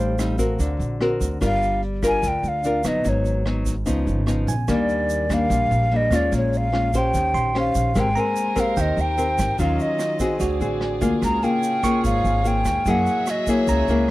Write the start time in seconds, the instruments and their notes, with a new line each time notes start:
Already playing: upright bass A1, nylon-string guitar A2 G3 C4 D#4, flute C5, tine electric piano F5
0.19 nylon-string guitar G3 C4 D#4, cross-stick, closed hi-hat, shaker
0.38 nylon-string guitar C4 F#4 A#4, kick, closed hi-hat, shaker
0.59 upright bass D2, nylon-string guitar D3, kick, closed hi-hat, shaker
0.79 upright bass A#1, closed hi-hat, shaker
1.01 nylon-string guitar C4 F#4 A#4, cross-stick, closed hi-hat
1.21 upright bass D2, kick, closed hi-hat, shaker
1.41 upright bass G1, nylon-string guitar G3 D4 F4 A#4, flute F5, kick, cross-stick, closed hi-hat, shaker
1.62 closed hi-hat, shaker
1.82 closed hi-hat
2.02 nylon-string guitar D4 F4 A#4, kick, cross-stick, closed hi-hat, shaker
2.07 flute G#5
2.22 upright bass D2, nylon-string guitar D3, kick, closed hi-hat, shaker
2.28 flute G5
2.43 upright bass D2, closed hi-hat, shaker
2.48 flute F5
2.64 nylon-string guitar D4 F4 A#4, closed hi-hat, shaker
2.84 upright bass G1, nylon-string guitar F#3 B3 D#4, flute D#5, cross-stick, closed hi-hat, shaker
3.05 upright bass G#1, nylon-string guitar G#2, kick, closed hi-hat, shaker
3.09 flute C#5
3.25 closed hi-hat, shaker
3.46 nylon-string guitar F#3 B3 D#4, cross-stick, closed hi-hat
3.66 kick, closed hi-hat, shaker
3.86 upright bass C#2, nylon-string guitar C#3 F3 B3 D#4, kick, closed hi-hat, shaker
4.07 upright bass G#1, closed hi-hat, shaker
4.26 nylon-string guitar F3 B3 D#4, cross-stick, closed hi-hat, shaker
4.47 upright bass A#1, tine electric piano G#5, closed hi-hat, shaker
4.68 upright bass D#2, nylon-string guitar D#3 G3 A#3 D4, flute D5, kick, cross-stick, closed hi-hat, shaker
4.89 closed hi-hat, shaker
5.09 closed hi-hat, shaker
5.29 nylon-string guitar G3 A#3 D4, kick, cross-stick, closed hi-hat, shaker
5.34 flute F5
5.50 upright bass A#1, nylon-string guitar A#2, kick, closed hi-hat, shaker
5.71 upright bass A#1, closed hi-hat, shaker
5.91 nylon-string guitar G3 A#3 D4, closed hi-hat
5.96 flute D#5
6.11 upright bass D#2, nylon-string guitar G#3 C#4 F4, cross-stick, closed hi-hat, shaker
6.16 flute D5
6.32 upright bass A#1, nylon-string guitar A#2, kick, closed hi-hat, shaker
6.37 flute C#5
6.53 closed hi-hat, shaker
6.57 flute F5
6.72 nylon-string guitar G#3 C#4 F4, cross-stick, closed hi-hat
6.94 nylon-string guitar C#4 G4 C5, kick, closed hi-hat, shaker
6.98 flute G5
7.14 upright bass D#2, nylon-string guitar D#3, kick, closed hi-hat, shaker
7.34 upright bass A#1, tine electric piano C6, closed hi-hat, shaker
7.55 nylon-string guitar C#4 G4 C5, cross-stick, closed hi-hat
7.59 flute F5
7.75 upright bass A#1, kick, closed hi-hat, shaker
7.95 upright bass G#1, nylon-string guitar G#3 C4 G4 A#4, string section A#3 A#4 C5, kick, cross-stick, closed hi-hat, shaker
8.00 flute G5
8.16 nylon-string guitar C4 A#4, tine electric piano A#5, closed hi-hat, shaker
8.20 flute G#5
8.36 closed hi-hat, shaker
8.55 nylon-string guitar C4 G4 A#4, kick, cross-stick, shaker
8.60 flute F5
8.77 upright bass D#2, nylon-string guitar D#3, tine electric piano G5, kick, closed hi-hat, shaker
8.81 flute D#5
8.97 upright bass D#2, closed hi-hat, shaker
9.01 flute G5
9.18 nylon-string guitar C4 G4 A#4, closed hi-hat, shaker
9.38 upright bass G#1, kick, cross-stick, shaker
9.59 upright bass D#2, nylon-string guitar D#3 F#3 C#4 F4, string section C#4 F4 D#5, flute F5, kick, closed hi-hat, shaker
9.79 flute D#5, closed hi-hat, shaker
9.99 cross-stick, closed hi-hat, shaker
10.19 nylon-string guitar C4 F#4 G#4, kick, closed hi-hat, shaker
10.39 upright bass D2, nylon-string guitar D3, string section C4 G#4 D5, tine electric piano F#4, kick, closed hi-hat, shaker
10.60 upright bass A1, nylon-string guitar C4 F#4 G#4, closed hi-hat, shaker
10.81 cross-stick, closed hi-hat
11.01 upright bass D2, nylon-string guitar A#3 F4 G#4, kick, shaker
11.22 upright bass C#2, nylon-string guitar C#3, string section A#3 F4 C#5, flute A#5, kick, cross-stick, closed hi-hat, shaker
11.42 nylon-string guitar A#3 F4 G#4, flute G5, closed hi-hat, shaker
11.63 closed hi-hat, shaker
11.83 nylon-string guitar A#3 F4 G#4, tine electric piano C#6, kick, cross-stick, shaker
12.04 upright bass G#1, nylon-string guitar G#2, flute F5, kick, closed hi-hat, shaker
12.24 upright bass G#1, closed hi-hat, shaker
12.44 nylon-string guitar A#3 F4 G#4, flute G5, closed hi-hat, shaker
12.65 upright bass D#2, kick, cross-stick, shaker
12.86 upright bass F#2, nylon-string guitar F#3 A#3 E4 G#4, string section A#3 F#4 G#4 E5, kick, closed hi-hat, shaker
12.90 flute F#5
13.06 closed hi-hat, shaker
13.27 flute D#5, cross-stick, closed hi-hat, shaker
13.47 nylon-string guitar A#3 E4 G#4, flute C#5, kick, shaker
13.67 upright bass C#2, nylon-string guitar C#3, tine electric piano A#5, kick, closed hi-hat, shaker
13.88 upright bass C#2, nylon-string guitar A#3 E4 G#4, closed hi-hat, shaker